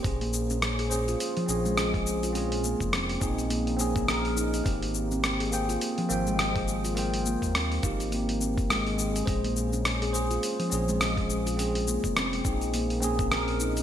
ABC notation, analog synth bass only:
X:1
M:4/4
L:1/16
Q:"Swing 16ths" 1/4=104
K:Bbdor
V:1 name="Analog synth bass" clef=bass
B,,,8 z2 B,,,6- | B,,,3 F,,,3 B,,,8- B,,,2 | A,,,8 z2 A,,,6- | A,,,3 E,,3 A,,,8 A,,,2 |
B,,,8 z2 B,,,6- | B,,,3 F,,,3 B,,,8- B,,,2 |]